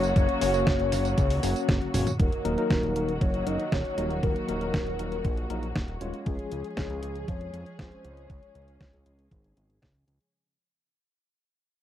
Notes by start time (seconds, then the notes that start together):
Already playing: F#1 C#3 F#3 A#3 C#4 F#4 C#5
0.03 closed hi-hat, tambourine
0.16 F#1 C#5, kick, closed hi-hat, tambourine
0.29 closed hi-hat
0.41 F#1 A#3 C#4 F#4 C#5, open hi-hat, tambourine
0.54 A#3 C#4 F#4 C#5, closed hi-hat, tambourine
0.67 F#1, kick, snare, closed hi-hat, tambourine
0.80 F#1, closed hi-hat
0.92 F#1 A#3 C#4 F#4 C#5, snare, open hi-hat, tambourine
1.05 closed hi-hat, tambourine
1.18 C#2, kick, closed hi-hat, tambourine
1.30 open hi-hat
1.43 F#1 A#3 C#4 F#4 C#5, open hi-hat, tambourine
1.56 closed hi-hat, tambourine
1.69 F#1, kick, snare, closed hi-hat, high tom, tambourine
1.82 closed hi-hat, high tom
1.94 F#1 A#3 C#4 F#4 C#5, open hi-hat, mid tom, tambourine
2.07 closed hi-hat, mid tom, tambourine
2.19 D#1 D#3 F#3 A#3 F#4 A#4, kick, closed hi-hat
2.32 closed hi-hat
2.45 D#1 F#3 A#3 D#4 A#4, closed hi-hat
2.58 F#3 A#3 D#4 A#4, closed hi-hat
2.70 D#1, kick, snare, closed hi-hat
2.83 D#1, closed hi-hat
2.96 D#1 F#3 A#3 D#4 A#4, closed hi-hat
3.09 closed hi-hat
3.21 F#1 C#5, kick, closed hi-hat
3.34 closed hi-hat
3.47 F#1 F#3 A#3 D#4 A#4 D#5, closed hi-hat
3.60 closed hi-hat
3.72 D#1 C#5, kick, snare, closed hi-hat
3.85 closed hi-hat
3.98 D#1 F#3 A#3 D#4 A#4, closed hi-hat
4.10 closed hi-hat
4.23 D#1 A#4, kick, closed hi-hat
4.36 closed hi-hat
4.48 D#1 F#3 A#3 D#4 A#4, closed hi-hat
4.61 F#3 A#3 D#4 A#4, closed hi-hat
4.74 D#1, kick, snare, closed hi-hat
4.87 D#1, closed hi-hat
4.99 D#1 F#3 A#3 D#4 A#4, closed hi-hat
5.12 closed hi-hat
5.25 A#1, kick, closed hi-hat
5.37 closed hi-hat
5.50 A#1 F#3 A#3 D#4 A#4, closed hi-hat
5.63 closed hi-hat
5.76 D#1, kick, snare, closed hi-hat
5.88 closed hi-hat
6.01 D#1 G#3 C#4 F4 C#5, closed hi-hat
6.14 closed hi-hat
6.26 C#2 F3 G#3 C#4 G#4, kick, closed hi-hat
6.39 closed hi-hat
6.52 C#2, closed hi-hat
6.64 closed hi-hat
6.77 C#2, kick, snare, closed hi-hat
6.90 C#2, closed hi-hat
7.03 C#2, closed hi-hat
7.16 closed hi-hat
7.28 F2 C#5, kick, closed hi-hat
7.41 closed hi-hat
7.54 F2, closed hi-hat
7.66 closed hi-hat
7.79 C#2 C5, kick, snare, closed hi-hat
7.92 closed hi-hat
8.05 C#2, closed hi-hat
8.17 closed hi-hat
8.30 C#2 C#5, kick, closed hi-hat
8.43 closed hi-hat
8.55 C#2, closed hi-hat
8.68 closed hi-hat
8.81 C#2, kick, snare, closed hi-hat
8.93 C#2, closed hi-hat
9.06 C#2, closed hi-hat
9.19 closed hi-hat
9.31 G#1, kick, closed hi-hat
9.44 closed hi-hat
9.57 G#1, closed hi-hat
9.70 closed hi-hat
9.82 C#2, kick, snare, closed hi-hat
9.95 closed hi-hat
10.08 C#2, closed hi-hat
10.21 closed hi-hat